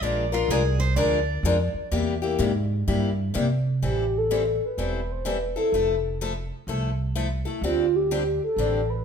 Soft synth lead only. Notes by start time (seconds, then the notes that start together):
3.87 G4
4.18 A4
4.66 B4
5.11 C5
5.29 B4
5.58 A4
7.64 F4
7.96 G4
8.44 A4
8.90 B4